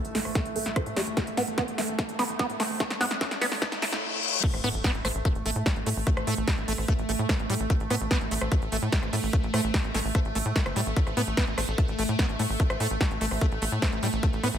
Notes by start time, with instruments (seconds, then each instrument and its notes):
Already playing: ambient pad A3, analog synth pad E4 A4 E5, riser
0.05 analog synth bass A1, closed hi-hat
0.15 analog synth bass A1, acid bass A3, snare, open hi-hat
0.25 analog synth bass A1, cross-stick, open hi-hat
0.35 acid bass A3, kick, snare, closed hi-hat
0.45 analog synth bass A1, closed hi-hat
0.56 analog synth bass A1, acid bass A3, open hi-hat
0.66 analog synth bass A1, snare, closed hi-hat
0.76 acid bass A3, kick, cross-stick, closed hi-hat
0.86 analog synth bass A2, closed hi-hat
0.96 analog synth bass A1, acid bass G3, snare, open hi-hat
1.07 analog synth bass A1, closed hi-hat
1.17 acid bass A3, kick, snare, closed hi-hat
1.27 analog synth bass A1, closed hi-hat
1.37 analog synth bass A2, acid bass B3, snare, open hi-hat
1.48 analog synth bass A1, closed hi-hat
1.58 acid bass B3, kick, snare, closed hi-hat
1.68 analog synth bass A1, closed hi-hat
1.78 analog synth bass A1, acid bass A3, snare, open hi-hat
1.88 analog synth bass A1, closed hi-hat
1.99 acid bass A3, kick, snare, closed hi-hat
2.09 analog synth bass A1, closed hi-hat
2.19 analog synth bass A1, acid bass B3, snare, open hi-hat
2.29 analog synth bass A1, closed hi-hat
2.39 acid bass B3, kick, snare, closed hi-hat
2.50 analog synth bass A2, closed hi-hat
2.60 analog synth bass A1, acid bass A3, snare, open hi-hat
2.70 analog synth bass A1, open hi-hat
2.80 acid bass A3, kick, snare
2.90 analog synth bass A1, snare, closed hi-hat
3.01 analog synth bass A2, acid bass B3, snare, open hi-hat
3.11 analog synth bass A1, snare, closed hi-hat
3.21 acid bass A3, kick, snare, closed hi-hat
3.31 analog synth bass A1, snare, closed hi-hat
3.41 analog synth bass A1, acid bass B3, snare, open hi-hat
3.52 analog synth bass A1, snare, open hi-hat
3.62 acid bass A3, kick, snare, closed hi-hat, reverse cymbal
3.72 analog synth bass A1, snare, closed hi-hat
3.82 analog synth bass A1, acid bass A3, snare, open hi-hat
3.92 analog synth bass A2, snare, closed hi-hat
4.23 closed hi-hat
4.28 closed hi-hat
4.33 closed hi-hat
4.38 closed hi-hat
4.43 ambient pad A3, acid bass A3, kick, crash, impact
4.54 analog synth bass A1, cross-stick, closed hi-hat
4.64 analog synth bass A2, acid bass B3, open hi-hat
4.74 analog synth bass A1, closed hi-hat
4.84 acid bass B3, kick, snare, closed hi-hat
4.95 analog synth bass A1, closed hi-hat
5.05 analog synth bass A1, acid bass A3, cross-stick, open hi-hat
5.15 analog synth bass A1, closed hi-hat
5.25 acid bass A3, kick, closed hi-hat
5.35 analog synth bass A1, closed hi-hat
5.46 analog synth bass A1, acid bass A3, open hi-hat
5.56 analog synth bass A2, closed hi-hat
5.66 acid bass G3, kick, cross-stick, snare, closed hi-hat
5.76 analog synth bass A1, closed hi-hat
5.86 analog synth bass A2, acid bass A3, open hi-hat
5.97 analog synth bass A1, open hi-hat
6.07 acid bass A3, kick, closed hi-hat
6.17 analog synth bass A1, cross-stick, closed hi-hat
6.27 analog synth bass A2, acid bass A3, open hi-hat
6.37 analog synth bass A1, closed hi-hat
6.48 acid bass G3, kick, snare, closed hi-hat
6.58 analog synth bass A1, closed hi-hat
6.68 analog synth bass A1, acid bass A3, open hi-hat
6.78 analog synth bass A1, cross-stick, open hi-hat
6.88 acid bass A3, kick, closed hi-hat
6.99 analog synth bass A1, closed hi-hat
7.09 analog synth bass A1, acid bass A3, open hi-hat
7.19 analog synth bass A2, closed hi-hat
7.29 acid bass A3, kick, cross-stick, snare, closed hi-hat
7.39 analog synth bass A1, closed hi-hat
7.50 analog synth bass A2, acid bass G3, open hi-hat
7.60 analog synth bass A1, closed hi-hat
7.70 acid bass A3, kick, closed hi-hat
7.80 analog synth bass A1, closed hi-hat
7.90 analog synth bass A2, acid bass B3, cross-stick, open hi-hat
8.01 analog synth bass A1, closed hi-hat
8.11 acid bass B3, kick, snare, closed hi-hat
8.21 analog synth bass A1, closed hi-hat
8.31 analog synth bass A1, acid bass A3, open hi-hat
8.41 analog synth bass A1, cross-stick, closed hi-hat
8.52 acid bass A3, kick, closed hi-hat
8.62 analog synth bass A1, closed hi-hat
8.72 analog synth bass A1, acid bass A3, open hi-hat
8.82 analog synth bass A2, closed hi-hat
8.92 acid bass G3, kick, snare, closed hi-hat
9.03 analog synth bass A1, cross-stick, closed hi-hat
9.13 analog synth bass A2, acid bass A3, open hi-hat
9.23 analog synth bass A1, open hi-hat
9.33 acid bass A3, kick, closed hi-hat
9.43 analog synth bass A1, closed hi-hat
9.54 analog synth bass A2, acid bass A3, cross-stick, open hi-hat
9.64 analog synth bass A1, closed hi-hat
9.74 acid bass G3, kick, snare, closed hi-hat
9.84 analog synth bass A1, closed hi-hat
9.94 analog synth bass A1, acid bass A3, snare, open hi-hat
10.05 analog synth bass A1, open hi-hat
10.15 acid bass A3, kick, cross-stick, closed hi-hat
10.25 analog synth bass A1, closed hi-hat
10.35 analog synth bass A1, acid bass A3, open hi-hat
10.45 analog synth bass A2, closed hi-hat
10.56 acid bass A3, kick, snare, closed hi-hat
10.66 analog synth bass G1, cross-stick, closed hi-hat
10.76 analog synth bass A2, acid bass G3, open hi-hat
10.86 analog synth bass A1, closed hi-hat
10.96 acid bass A3, kick, closed hi-hat
11.07 analog synth bass A1, cross-stick, closed hi-hat
11.17 analog synth bass A2, acid bass B3, open hi-hat
11.27 analog synth bass A1, closed hi-hat
11.37 acid bass B3, kick, snare, closed hi-hat
11.48 analog synth bass A1, closed hi-hat
11.58 analog synth bass A1, acid bass A3, cross-stick, open hi-hat
11.68 analog synth bass A1, closed hi-hat
11.78 acid bass A3, kick, closed hi-hat
11.88 analog synth bass A1, closed hi-hat
11.99 analog synth bass A1, acid bass A3, open hi-hat
12.09 analog synth bass A2, closed hi-hat
12.19 acid bass B3, kick, cross-stick, snare, closed hi-hat
12.29 analog synth bass A1, closed hi-hat
12.39 analog synth bass A2, acid bass A3, open hi-hat
12.50 analog synth bass A1, open hi-hat
12.60 acid bass A3, kick, closed hi-hat
12.70 analog synth bass A1, cross-stick, closed hi-hat
12.80 analog synth bass A2, acid bass A3, open hi-hat
12.90 analog synth bass A1, closed hi-hat
13.01 acid bass G3, kick, snare, closed hi-hat
13.11 analog synth bass A1, closed hi-hat
13.21 analog synth bass A1, acid bass A3, open hi-hat
13.31 analog synth bass A1, cross-stick, open hi-hat
13.41 acid bass A3, kick, closed hi-hat
13.52 analog synth bass A1, closed hi-hat
13.62 analog synth bass A1, acid bass A3, open hi-hat
13.72 analog synth bass A2, closed hi-hat
13.82 acid bass A3, kick, cross-stick, snare, closed hi-hat
13.92 analog synth bass A1, closed hi-hat
14.03 analog synth bass A2, acid bass G3, open hi-hat
14.13 analog synth bass A1, closed hi-hat
14.23 acid bass A3, kick, closed hi-hat
14.33 analog synth bass A1, closed hi-hat
14.43 analog synth bass A2, acid bass B3, cross-stick, open hi-hat
14.54 analog synth bass A1, closed hi-hat